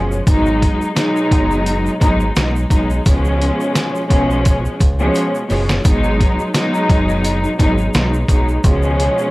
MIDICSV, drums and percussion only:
0, 0, Header, 1, 2, 480
1, 0, Start_track
1, 0, Tempo, 697674
1, 184, Time_signature, 4, 2, 24, 8
1, 6404, End_track
2, 0, Start_track
2, 0, Title_t, "Drums"
2, 80, Note_on_c, 9, 82, 51
2, 149, Note_off_c, 9, 82, 0
2, 185, Note_on_c, 9, 36, 111
2, 186, Note_on_c, 9, 42, 100
2, 187, Note_on_c, 9, 82, 70
2, 254, Note_off_c, 9, 36, 0
2, 255, Note_off_c, 9, 42, 0
2, 255, Note_off_c, 9, 82, 0
2, 317, Note_on_c, 9, 82, 45
2, 386, Note_off_c, 9, 82, 0
2, 429, Note_on_c, 9, 36, 86
2, 430, Note_on_c, 9, 42, 80
2, 498, Note_off_c, 9, 36, 0
2, 499, Note_off_c, 9, 42, 0
2, 562, Note_on_c, 9, 82, 51
2, 631, Note_off_c, 9, 82, 0
2, 664, Note_on_c, 9, 38, 120
2, 664, Note_on_c, 9, 82, 79
2, 668, Note_on_c, 9, 42, 92
2, 733, Note_off_c, 9, 38, 0
2, 733, Note_off_c, 9, 82, 0
2, 737, Note_off_c, 9, 42, 0
2, 801, Note_on_c, 9, 82, 56
2, 870, Note_off_c, 9, 82, 0
2, 903, Note_on_c, 9, 36, 93
2, 905, Note_on_c, 9, 42, 70
2, 972, Note_off_c, 9, 36, 0
2, 974, Note_off_c, 9, 42, 0
2, 1039, Note_on_c, 9, 82, 53
2, 1108, Note_off_c, 9, 82, 0
2, 1144, Note_on_c, 9, 42, 95
2, 1146, Note_on_c, 9, 82, 74
2, 1213, Note_off_c, 9, 42, 0
2, 1215, Note_off_c, 9, 82, 0
2, 1281, Note_on_c, 9, 82, 52
2, 1350, Note_off_c, 9, 82, 0
2, 1385, Note_on_c, 9, 36, 88
2, 1385, Note_on_c, 9, 82, 50
2, 1387, Note_on_c, 9, 42, 74
2, 1453, Note_off_c, 9, 82, 0
2, 1454, Note_off_c, 9, 36, 0
2, 1456, Note_off_c, 9, 42, 0
2, 1514, Note_on_c, 9, 82, 45
2, 1583, Note_off_c, 9, 82, 0
2, 1621, Note_on_c, 9, 82, 70
2, 1627, Note_on_c, 9, 42, 84
2, 1629, Note_on_c, 9, 38, 117
2, 1690, Note_off_c, 9, 82, 0
2, 1696, Note_off_c, 9, 42, 0
2, 1698, Note_off_c, 9, 38, 0
2, 1761, Note_on_c, 9, 82, 50
2, 1830, Note_off_c, 9, 82, 0
2, 1860, Note_on_c, 9, 36, 86
2, 1863, Note_on_c, 9, 82, 54
2, 1864, Note_on_c, 9, 42, 71
2, 1929, Note_off_c, 9, 36, 0
2, 1932, Note_off_c, 9, 82, 0
2, 1933, Note_off_c, 9, 42, 0
2, 1997, Note_on_c, 9, 82, 49
2, 2065, Note_off_c, 9, 82, 0
2, 2103, Note_on_c, 9, 82, 70
2, 2105, Note_on_c, 9, 36, 115
2, 2105, Note_on_c, 9, 42, 102
2, 2172, Note_off_c, 9, 82, 0
2, 2173, Note_off_c, 9, 36, 0
2, 2173, Note_off_c, 9, 42, 0
2, 2235, Note_on_c, 9, 82, 47
2, 2303, Note_off_c, 9, 82, 0
2, 2350, Note_on_c, 9, 42, 80
2, 2418, Note_off_c, 9, 42, 0
2, 2480, Note_on_c, 9, 82, 49
2, 2549, Note_off_c, 9, 82, 0
2, 2583, Note_on_c, 9, 38, 122
2, 2584, Note_on_c, 9, 82, 78
2, 2587, Note_on_c, 9, 42, 93
2, 2651, Note_off_c, 9, 38, 0
2, 2653, Note_off_c, 9, 82, 0
2, 2656, Note_off_c, 9, 42, 0
2, 2721, Note_on_c, 9, 82, 52
2, 2789, Note_off_c, 9, 82, 0
2, 2823, Note_on_c, 9, 36, 92
2, 2825, Note_on_c, 9, 42, 71
2, 2892, Note_off_c, 9, 36, 0
2, 2893, Note_off_c, 9, 42, 0
2, 2962, Note_on_c, 9, 82, 54
2, 3031, Note_off_c, 9, 82, 0
2, 3063, Note_on_c, 9, 42, 99
2, 3068, Note_on_c, 9, 36, 98
2, 3068, Note_on_c, 9, 82, 73
2, 3132, Note_off_c, 9, 42, 0
2, 3136, Note_off_c, 9, 36, 0
2, 3136, Note_off_c, 9, 82, 0
2, 3201, Note_on_c, 9, 82, 53
2, 3270, Note_off_c, 9, 82, 0
2, 3305, Note_on_c, 9, 36, 92
2, 3305, Note_on_c, 9, 82, 51
2, 3307, Note_on_c, 9, 42, 72
2, 3373, Note_off_c, 9, 82, 0
2, 3374, Note_off_c, 9, 36, 0
2, 3376, Note_off_c, 9, 42, 0
2, 3434, Note_on_c, 9, 82, 46
2, 3503, Note_off_c, 9, 82, 0
2, 3541, Note_on_c, 9, 82, 71
2, 3547, Note_on_c, 9, 42, 83
2, 3609, Note_off_c, 9, 82, 0
2, 3616, Note_off_c, 9, 42, 0
2, 3680, Note_on_c, 9, 82, 52
2, 3748, Note_off_c, 9, 82, 0
2, 3783, Note_on_c, 9, 46, 49
2, 3783, Note_on_c, 9, 82, 57
2, 3851, Note_off_c, 9, 82, 0
2, 3852, Note_off_c, 9, 46, 0
2, 3917, Note_on_c, 9, 38, 91
2, 3917, Note_on_c, 9, 82, 49
2, 3986, Note_off_c, 9, 38, 0
2, 3986, Note_off_c, 9, 82, 0
2, 4023, Note_on_c, 9, 82, 69
2, 4025, Note_on_c, 9, 36, 114
2, 4025, Note_on_c, 9, 42, 100
2, 4092, Note_off_c, 9, 82, 0
2, 4093, Note_off_c, 9, 36, 0
2, 4094, Note_off_c, 9, 42, 0
2, 4153, Note_on_c, 9, 82, 45
2, 4222, Note_off_c, 9, 82, 0
2, 4269, Note_on_c, 9, 36, 87
2, 4270, Note_on_c, 9, 42, 78
2, 4338, Note_off_c, 9, 36, 0
2, 4339, Note_off_c, 9, 42, 0
2, 4399, Note_on_c, 9, 82, 49
2, 4468, Note_off_c, 9, 82, 0
2, 4501, Note_on_c, 9, 82, 77
2, 4502, Note_on_c, 9, 38, 120
2, 4507, Note_on_c, 9, 42, 93
2, 4570, Note_off_c, 9, 82, 0
2, 4571, Note_off_c, 9, 38, 0
2, 4576, Note_off_c, 9, 42, 0
2, 4639, Note_on_c, 9, 82, 56
2, 4707, Note_off_c, 9, 82, 0
2, 4743, Note_on_c, 9, 36, 95
2, 4745, Note_on_c, 9, 42, 70
2, 4812, Note_off_c, 9, 36, 0
2, 4814, Note_off_c, 9, 42, 0
2, 4879, Note_on_c, 9, 82, 55
2, 4947, Note_off_c, 9, 82, 0
2, 4984, Note_on_c, 9, 42, 97
2, 4984, Note_on_c, 9, 82, 76
2, 5053, Note_off_c, 9, 42, 0
2, 5053, Note_off_c, 9, 82, 0
2, 5119, Note_on_c, 9, 82, 54
2, 5188, Note_off_c, 9, 82, 0
2, 5224, Note_on_c, 9, 82, 51
2, 5225, Note_on_c, 9, 36, 89
2, 5227, Note_on_c, 9, 42, 74
2, 5293, Note_off_c, 9, 82, 0
2, 5294, Note_off_c, 9, 36, 0
2, 5296, Note_off_c, 9, 42, 0
2, 5353, Note_on_c, 9, 82, 46
2, 5422, Note_off_c, 9, 82, 0
2, 5460, Note_on_c, 9, 82, 72
2, 5467, Note_on_c, 9, 42, 84
2, 5469, Note_on_c, 9, 38, 116
2, 5528, Note_off_c, 9, 82, 0
2, 5536, Note_off_c, 9, 42, 0
2, 5538, Note_off_c, 9, 38, 0
2, 5599, Note_on_c, 9, 82, 50
2, 5667, Note_off_c, 9, 82, 0
2, 5700, Note_on_c, 9, 36, 84
2, 5703, Note_on_c, 9, 82, 56
2, 5704, Note_on_c, 9, 42, 68
2, 5769, Note_off_c, 9, 36, 0
2, 5771, Note_off_c, 9, 82, 0
2, 5772, Note_off_c, 9, 42, 0
2, 5837, Note_on_c, 9, 82, 51
2, 5906, Note_off_c, 9, 82, 0
2, 5943, Note_on_c, 9, 82, 69
2, 5944, Note_on_c, 9, 36, 112
2, 5945, Note_on_c, 9, 42, 96
2, 6012, Note_off_c, 9, 82, 0
2, 6013, Note_off_c, 9, 36, 0
2, 6014, Note_off_c, 9, 42, 0
2, 6073, Note_on_c, 9, 82, 46
2, 6141, Note_off_c, 9, 82, 0
2, 6190, Note_on_c, 9, 42, 77
2, 6259, Note_off_c, 9, 42, 0
2, 6318, Note_on_c, 9, 82, 49
2, 6387, Note_off_c, 9, 82, 0
2, 6404, End_track
0, 0, End_of_file